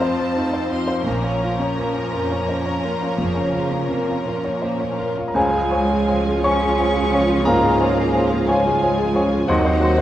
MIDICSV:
0, 0, Header, 1, 12, 480
1, 0, Start_track
1, 0, Key_signature, -5, "minor"
1, 0, Tempo, 707547
1, 720, Time_signature, 12, 3, 24, 8
1, 2649, Tempo, 723764
1, 3611, Key_signature, -5, "major"
1, 4569, Tempo, 669643
1, 6874, End_track
2, 0, Start_track
2, 0, Title_t, "Violin section"
2, 0, Program_c, 0, 48
2, 13, Note_on_c, 0, 81, 53
2, 480, Note_off_c, 0, 81, 0
2, 483, Note_on_c, 0, 84, 49
2, 718, Note_off_c, 0, 84, 0
2, 727, Note_on_c, 0, 82, 49
2, 3375, Note_off_c, 0, 82, 0
2, 3606, Note_on_c, 0, 80, 48
2, 4309, Note_off_c, 0, 80, 0
2, 4333, Note_on_c, 0, 85, 59
2, 5039, Note_on_c, 0, 82, 59
2, 5043, Note_off_c, 0, 85, 0
2, 5759, Note_off_c, 0, 82, 0
2, 5775, Note_on_c, 0, 80, 49
2, 6495, Note_off_c, 0, 80, 0
2, 6498, Note_on_c, 0, 78, 60
2, 6874, Note_off_c, 0, 78, 0
2, 6874, End_track
3, 0, Start_track
3, 0, Title_t, "Flute"
3, 0, Program_c, 1, 73
3, 3610, Note_on_c, 1, 80, 39
3, 3664, Note_off_c, 1, 80, 0
3, 3848, Note_on_c, 1, 80, 35
3, 3904, Note_off_c, 1, 80, 0
3, 4082, Note_on_c, 1, 80, 35
3, 4138, Note_off_c, 1, 80, 0
3, 4333, Note_on_c, 1, 80, 38
3, 4385, Note_off_c, 1, 80, 0
3, 4560, Note_on_c, 1, 80, 38
3, 4614, Note_off_c, 1, 80, 0
3, 4802, Note_on_c, 1, 80, 33
3, 4856, Note_off_c, 1, 80, 0
3, 5037, Note_on_c, 1, 80, 37
3, 5093, Note_off_c, 1, 80, 0
3, 5272, Note_on_c, 1, 80, 36
3, 5329, Note_off_c, 1, 80, 0
3, 5522, Note_on_c, 1, 80, 38
3, 5578, Note_off_c, 1, 80, 0
3, 5768, Note_on_c, 1, 80, 43
3, 5824, Note_off_c, 1, 80, 0
3, 6015, Note_on_c, 1, 80, 43
3, 6070, Note_off_c, 1, 80, 0
3, 6257, Note_on_c, 1, 80, 37
3, 6310, Note_off_c, 1, 80, 0
3, 6501, Note_on_c, 1, 84, 45
3, 6553, Note_off_c, 1, 84, 0
3, 6746, Note_on_c, 1, 84, 43
3, 6797, Note_off_c, 1, 84, 0
3, 6874, End_track
4, 0, Start_track
4, 0, Title_t, "Clarinet"
4, 0, Program_c, 2, 71
4, 3606, Note_on_c, 2, 73, 39
4, 3712, Note_off_c, 2, 73, 0
4, 3844, Note_on_c, 2, 73, 36
4, 3950, Note_off_c, 2, 73, 0
4, 4093, Note_on_c, 2, 73, 36
4, 4199, Note_off_c, 2, 73, 0
4, 4331, Note_on_c, 2, 73, 41
4, 4436, Note_off_c, 2, 73, 0
4, 4566, Note_on_c, 2, 73, 35
4, 4674, Note_off_c, 2, 73, 0
4, 4802, Note_on_c, 2, 73, 35
4, 4911, Note_off_c, 2, 73, 0
4, 5045, Note_on_c, 2, 73, 42
4, 5154, Note_off_c, 2, 73, 0
4, 5281, Note_on_c, 2, 73, 38
4, 5393, Note_off_c, 2, 73, 0
4, 5535, Note_on_c, 2, 73, 37
4, 5644, Note_off_c, 2, 73, 0
4, 5780, Note_on_c, 2, 73, 41
4, 5888, Note_off_c, 2, 73, 0
4, 6021, Note_on_c, 2, 73, 37
4, 6128, Note_off_c, 2, 73, 0
4, 6259, Note_on_c, 2, 73, 39
4, 6366, Note_off_c, 2, 73, 0
4, 6495, Note_on_c, 2, 72, 43
4, 6601, Note_off_c, 2, 72, 0
4, 6741, Note_on_c, 2, 72, 41
4, 6844, Note_off_c, 2, 72, 0
4, 6874, End_track
5, 0, Start_track
5, 0, Title_t, "Grand piano"
5, 0, Program_c, 3, 0
5, 0, Control_c, 3, 64, 127
5, 0, Note_on_c, 3, 41, 45
5, 0, Note_on_c, 3, 60, 35
5, 0, Note_on_c, 3, 65, 34
5, 0, Note_on_c, 3, 72, 38
5, 10, Note_off_c, 3, 72, 0
5, 10, Note_on_c, 3, 72, 35
5, 79, Note_off_c, 3, 65, 0
5, 124, Note_on_c, 3, 65, 34
5, 195, Note_off_c, 3, 72, 0
5, 246, Note_on_c, 3, 63, 29
5, 311, Note_off_c, 3, 65, 0
5, 361, Note_off_c, 3, 63, 0
5, 362, Note_on_c, 3, 72, 31
5, 474, Note_on_c, 3, 65, 37
5, 552, Note_off_c, 3, 72, 0
5, 593, Note_on_c, 3, 72, 31
5, 669, Note_off_c, 3, 65, 0
5, 690, Note_off_c, 3, 41, 0
5, 717, Note_off_c, 3, 72, 0
5, 723, Note_on_c, 3, 46, 40
5, 733, Control_c, 3, 64, 0
5, 740, Note_off_c, 3, 60, 0
5, 838, Note_on_c, 3, 73, 32
5, 848, Control_c, 3, 64, 127
5, 958, Note_on_c, 3, 65, 31
5, 1035, Note_off_c, 3, 73, 0
5, 1082, Note_on_c, 3, 61, 28
5, 1155, Note_off_c, 3, 65, 0
5, 1205, Note_on_c, 3, 70, 31
5, 1277, Note_off_c, 3, 61, 0
5, 1325, Note_on_c, 3, 65, 27
5, 1399, Note_off_c, 3, 70, 0
5, 1441, Note_on_c, 3, 70, 31
5, 1520, Note_off_c, 3, 65, 0
5, 1572, Note_on_c, 3, 73, 31
5, 1639, Note_off_c, 3, 70, 0
5, 1690, Note_on_c, 3, 72, 27
5, 1765, Note_off_c, 3, 73, 0
5, 1803, Note_on_c, 3, 73, 33
5, 1812, Note_off_c, 3, 72, 0
5, 1928, Note_on_c, 3, 70, 33
5, 1999, Note_off_c, 3, 73, 0
5, 2039, Note_on_c, 3, 65, 31
5, 2120, Note_off_c, 3, 70, 0
5, 2144, Note_off_c, 3, 46, 0
5, 2158, Note_on_c, 3, 53, 31
5, 2235, Note_off_c, 3, 65, 0
5, 2273, Note_on_c, 3, 73, 32
5, 2354, Note_off_c, 3, 53, 0
5, 2399, Note_on_c, 3, 65, 30
5, 2472, Note_off_c, 3, 73, 0
5, 2516, Note_on_c, 3, 61, 27
5, 2596, Note_off_c, 3, 65, 0
5, 2643, Note_on_c, 3, 70, 31
5, 2714, Note_off_c, 3, 61, 0
5, 2768, Note_on_c, 3, 65, 28
5, 2835, Note_off_c, 3, 70, 0
5, 2887, Note_on_c, 3, 70, 33
5, 2958, Note_off_c, 3, 65, 0
5, 3006, Note_on_c, 3, 73, 32
5, 3079, Note_off_c, 3, 70, 0
5, 3123, Note_on_c, 3, 72, 26
5, 3200, Note_off_c, 3, 73, 0
5, 3244, Note_on_c, 3, 73, 31
5, 3247, Note_off_c, 3, 72, 0
5, 3367, Note_on_c, 3, 70, 35
5, 3443, Note_off_c, 3, 73, 0
5, 3492, Note_on_c, 3, 65, 31
5, 3560, Note_on_c, 3, 82, 33
5, 3562, Note_off_c, 3, 70, 0
5, 3603, Note_on_c, 3, 37, 49
5, 3610, Note_off_c, 3, 82, 0
5, 3610, Note_on_c, 3, 80, 53
5, 3611, Note_off_c, 3, 65, 0
5, 3618, Note_on_c, 3, 68, 40
5, 3621, Note_on_c, 3, 77, 40
5, 3625, Control_c, 3, 64, 0
5, 3721, Note_off_c, 3, 68, 0
5, 3731, Note_on_c, 3, 68, 37
5, 3739, Control_c, 3, 64, 127
5, 3848, Note_on_c, 3, 73, 39
5, 3924, Note_off_c, 3, 68, 0
5, 3975, Note_on_c, 3, 68, 34
5, 4046, Note_off_c, 3, 73, 0
5, 4095, Note_on_c, 3, 65, 36
5, 4171, Note_off_c, 3, 68, 0
5, 4216, Note_on_c, 3, 68, 36
5, 4290, Note_off_c, 3, 65, 0
5, 4311, Note_off_c, 3, 80, 0
5, 4316, Note_off_c, 3, 77, 0
5, 4329, Note_on_c, 3, 73, 38
5, 4333, Note_on_c, 3, 85, 56
5, 4343, Note_on_c, 3, 80, 40
5, 4406, Note_off_c, 3, 68, 0
5, 4453, Note_on_c, 3, 68, 37
5, 4517, Note_off_c, 3, 73, 0
5, 4571, Note_on_c, 3, 65, 36
5, 4639, Note_off_c, 3, 68, 0
5, 4690, Note_on_c, 3, 68, 39
5, 4761, Note_off_c, 3, 65, 0
5, 4815, Note_on_c, 3, 73, 40
5, 4880, Note_off_c, 3, 68, 0
5, 4932, Note_on_c, 3, 68, 39
5, 5002, Note_off_c, 3, 73, 0
5, 5013, Note_off_c, 3, 37, 0
5, 5015, Note_off_c, 3, 85, 0
5, 5020, Note_off_c, 3, 80, 0
5, 5037, Note_on_c, 3, 82, 66
5, 5043, Note_on_c, 3, 77, 47
5, 5047, Note_on_c, 3, 70, 49
5, 5057, Note_on_c, 3, 44, 35
5, 5121, Note_off_c, 3, 68, 0
5, 5176, Note_on_c, 3, 68, 41
5, 5244, Note_off_c, 3, 44, 0
5, 5292, Note_on_c, 3, 73, 41
5, 5365, Note_off_c, 3, 68, 0
5, 5417, Note_on_c, 3, 68, 36
5, 5486, Note_off_c, 3, 73, 0
5, 5536, Note_on_c, 3, 65, 39
5, 5610, Note_off_c, 3, 68, 0
5, 5663, Note_on_c, 3, 68, 39
5, 5730, Note_off_c, 3, 65, 0
5, 5744, Note_off_c, 3, 82, 0
5, 5747, Note_off_c, 3, 77, 0
5, 5749, Note_off_c, 3, 70, 0
5, 5778, Note_on_c, 3, 73, 46
5, 5779, Note_off_c, 3, 68, 0
5, 5782, Note_on_c, 3, 80, 47
5, 5789, Note_on_c, 3, 68, 36
5, 5792, Note_on_c, 3, 77, 39
5, 5894, Note_off_c, 3, 68, 0
5, 5904, Note_on_c, 3, 68, 41
5, 5971, Note_off_c, 3, 73, 0
5, 6018, Note_on_c, 3, 65, 42
5, 6094, Note_off_c, 3, 68, 0
5, 6141, Note_on_c, 3, 68, 42
5, 6210, Note_off_c, 3, 65, 0
5, 6257, Note_on_c, 3, 73, 47
5, 6331, Note_off_c, 3, 68, 0
5, 6371, Note_on_c, 3, 68, 40
5, 6448, Note_off_c, 3, 73, 0
5, 6470, Note_off_c, 3, 80, 0
5, 6475, Note_off_c, 3, 77, 0
5, 6492, Note_on_c, 3, 78, 62
5, 6493, Note_off_c, 3, 68, 0
5, 6498, Note_on_c, 3, 39, 55
5, 6502, Note_on_c, 3, 66, 44
5, 6503, Note_on_c, 3, 75, 46
5, 6510, Control_c, 3, 64, 0
5, 6612, Note_on_c, 3, 72, 42
5, 6633, Control_c, 3, 64, 127
5, 6720, Note_off_c, 3, 66, 0
5, 6731, Note_on_c, 3, 66, 50
5, 6801, Note_off_c, 3, 72, 0
5, 6851, Note_on_c, 3, 72, 42
5, 6874, Note_off_c, 3, 39, 0
5, 6874, Note_off_c, 3, 66, 0
5, 6874, Note_off_c, 3, 72, 0
5, 6874, Note_off_c, 3, 75, 0
5, 6874, Note_off_c, 3, 78, 0
5, 6874, End_track
6, 0, Start_track
6, 0, Title_t, "French horn section"
6, 0, Program_c, 4, 60
6, 3609, Note_on_c, 4, 61, 43
6, 3612, Note_on_c, 4, 65, 44
6, 6466, Note_off_c, 4, 61, 0
6, 6467, Note_off_c, 4, 65, 0
6, 6490, Note_on_c, 4, 66, 53
6, 6494, Note_on_c, 4, 60, 52
6, 6874, Note_off_c, 4, 60, 0
6, 6874, Note_off_c, 4, 66, 0
6, 6874, End_track
7, 0, Start_track
7, 0, Title_t, "Violin section"
7, 0, Program_c, 5, 48
7, 0, Note_on_c, 5, 72, 44
7, 13, Note_on_c, 5, 65, 34
7, 127, Note_off_c, 5, 65, 0
7, 135, Note_on_c, 5, 60, 33
7, 246, Note_off_c, 5, 60, 0
7, 252, Note_on_c, 5, 57, 36
7, 362, Note_on_c, 5, 60, 32
7, 364, Note_off_c, 5, 57, 0
7, 479, Note_off_c, 5, 60, 0
7, 484, Note_on_c, 5, 65, 32
7, 601, Note_off_c, 5, 65, 0
7, 602, Note_on_c, 5, 60, 31
7, 695, Note_off_c, 5, 72, 0
7, 720, Note_on_c, 5, 58, 33
7, 720, Note_on_c, 5, 70, 34
7, 722, Note_off_c, 5, 60, 0
7, 834, Note_off_c, 5, 58, 0
7, 843, Note_on_c, 5, 61, 31
7, 964, Note_off_c, 5, 61, 0
7, 972, Note_on_c, 5, 65, 32
7, 1090, Note_off_c, 5, 65, 0
7, 1092, Note_on_c, 5, 61, 29
7, 1209, Note_off_c, 5, 61, 0
7, 1223, Note_on_c, 5, 58, 30
7, 1335, Note_off_c, 5, 58, 0
7, 1337, Note_on_c, 5, 61, 32
7, 1453, Note_off_c, 5, 61, 0
7, 1454, Note_on_c, 5, 65, 32
7, 1572, Note_off_c, 5, 65, 0
7, 1572, Note_on_c, 5, 61, 31
7, 1690, Note_on_c, 5, 58, 30
7, 1692, Note_off_c, 5, 61, 0
7, 1811, Note_off_c, 5, 58, 0
7, 1815, Note_on_c, 5, 61, 29
7, 1933, Note_off_c, 5, 61, 0
7, 1933, Note_on_c, 5, 65, 30
7, 2052, Note_off_c, 5, 65, 0
7, 2053, Note_on_c, 5, 61, 30
7, 2171, Note_off_c, 5, 61, 0
7, 2178, Note_on_c, 5, 58, 34
7, 2284, Note_off_c, 5, 58, 0
7, 2299, Note_on_c, 5, 61, 31
7, 2413, Note_off_c, 5, 61, 0
7, 2424, Note_on_c, 5, 65, 31
7, 2536, Note_off_c, 5, 65, 0
7, 2539, Note_on_c, 5, 61, 31
7, 2654, Note_off_c, 5, 61, 0
7, 2655, Note_on_c, 5, 58, 31
7, 2770, Note_off_c, 5, 58, 0
7, 2773, Note_on_c, 5, 61, 31
7, 2889, Note_off_c, 5, 61, 0
7, 2894, Note_on_c, 5, 65, 32
7, 3010, Note_off_c, 5, 65, 0
7, 3011, Note_on_c, 5, 61, 31
7, 3130, Note_off_c, 5, 61, 0
7, 3131, Note_on_c, 5, 58, 33
7, 3245, Note_on_c, 5, 61, 29
7, 3251, Note_off_c, 5, 58, 0
7, 3367, Note_on_c, 5, 65, 29
7, 3370, Note_off_c, 5, 61, 0
7, 3445, Note_off_c, 5, 70, 0
7, 3491, Note_off_c, 5, 65, 0
7, 3492, Note_on_c, 5, 61, 29
7, 3601, Note_on_c, 5, 68, 37
7, 3603, Note_on_c, 5, 65, 40
7, 3611, Note_off_c, 5, 61, 0
7, 6462, Note_off_c, 5, 68, 0
7, 6463, Note_off_c, 5, 65, 0
7, 6490, Note_on_c, 5, 72, 45
7, 6492, Note_on_c, 5, 66, 46
7, 6874, Note_off_c, 5, 66, 0
7, 6874, Note_off_c, 5, 72, 0
7, 6874, End_track
8, 0, Start_track
8, 0, Title_t, "Viola section"
8, 0, Program_c, 6, 48
8, 0, Note_on_c, 6, 53, 40
8, 0, Note_on_c, 6, 60, 49
8, 698, Note_off_c, 6, 60, 0
8, 721, Note_on_c, 6, 61, 41
8, 3446, Note_off_c, 6, 61, 0
8, 3447, Note_off_c, 6, 53, 0
8, 3608, Note_on_c, 6, 53, 46
8, 3609, Note_on_c, 6, 65, 46
8, 6466, Note_off_c, 6, 53, 0
8, 6466, Note_off_c, 6, 65, 0
8, 6496, Note_on_c, 6, 63, 55
8, 6497, Note_on_c, 6, 60, 54
8, 6874, Note_off_c, 6, 60, 0
8, 6874, Note_off_c, 6, 63, 0
8, 6874, End_track
9, 0, Start_track
9, 0, Title_t, "Bassoon"
9, 0, Program_c, 7, 70
9, 3605, Note_on_c, 7, 53, 38
9, 3711, Note_off_c, 7, 53, 0
9, 3848, Note_on_c, 7, 53, 37
9, 3954, Note_off_c, 7, 53, 0
9, 4094, Note_on_c, 7, 53, 32
9, 4200, Note_off_c, 7, 53, 0
9, 4337, Note_on_c, 7, 53, 38
9, 4440, Note_off_c, 7, 53, 0
9, 4564, Note_on_c, 7, 53, 36
9, 4672, Note_off_c, 7, 53, 0
9, 4810, Note_on_c, 7, 53, 37
9, 4917, Note_off_c, 7, 53, 0
9, 5047, Note_on_c, 7, 53, 37
9, 5155, Note_off_c, 7, 53, 0
9, 5288, Note_on_c, 7, 53, 37
9, 5398, Note_off_c, 7, 53, 0
9, 5531, Note_on_c, 7, 53, 38
9, 5642, Note_off_c, 7, 53, 0
9, 5775, Note_on_c, 7, 53, 37
9, 5884, Note_off_c, 7, 53, 0
9, 6020, Note_on_c, 7, 53, 39
9, 6127, Note_off_c, 7, 53, 0
9, 6251, Note_on_c, 7, 53, 42
9, 6360, Note_off_c, 7, 53, 0
9, 6487, Note_on_c, 7, 54, 47
9, 6595, Note_off_c, 7, 54, 0
9, 6721, Note_on_c, 7, 54, 42
9, 6828, Note_off_c, 7, 54, 0
9, 6874, End_track
10, 0, Start_track
10, 0, Title_t, "Cello section"
10, 0, Program_c, 8, 48
10, 715, Note_on_c, 8, 46, 46
10, 1310, Note_off_c, 8, 46, 0
10, 1439, Note_on_c, 8, 41, 36
10, 1900, Note_off_c, 8, 41, 0
10, 1921, Note_on_c, 8, 46, 41
10, 2163, Note_on_c, 8, 49, 42
10, 2164, Note_off_c, 8, 46, 0
10, 2640, Note_on_c, 8, 48, 40
10, 2645, Note_off_c, 8, 49, 0
10, 2876, Note_off_c, 8, 48, 0
10, 2880, Note_on_c, 8, 46, 39
10, 3603, Note_on_c, 8, 56, 51
10, 3609, Note_off_c, 8, 46, 0
10, 4307, Note_off_c, 8, 56, 0
10, 4333, Note_on_c, 8, 61, 51
10, 5039, Note_on_c, 8, 58, 54
10, 5044, Note_off_c, 8, 61, 0
10, 5774, Note_off_c, 8, 58, 0
10, 5776, Note_on_c, 8, 56, 45
10, 6490, Note_on_c, 8, 54, 62
10, 6495, Note_off_c, 8, 56, 0
10, 6874, Note_off_c, 8, 54, 0
10, 6874, End_track
11, 0, Start_track
11, 0, Title_t, "Tuba"
11, 0, Program_c, 10, 58
11, 3607, Note_on_c, 10, 37, 45
11, 6493, Note_on_c, 10, 39, 55
11, 6504, Note_off_c, 10, 37, 0
11, 6874, Note_off_c, 10, 39, 0
11, 6874, End_track
12, 0, Start_track
12, 0, Title_t, "Double bass section"
12, 0, Program_c, 11, 48
12, 722, Note_on_c, 11, 34, 41
12, 1313, Note_off_c, 11, 34, 0
12, 2172, Note_on_c, 11, 29, 39
12, 2753, Note_off_c, 11, 29, 0
12, 3607, Note_on_c, 11, 37, 44
12, 6465, Note_off_c, 11, 37, 0
12, 6488, Note_on_c, 11, 39, 49
12, 6874, Note_off_c, 11, 39, 0
12, 6874, End_track
0, 0, End_of_file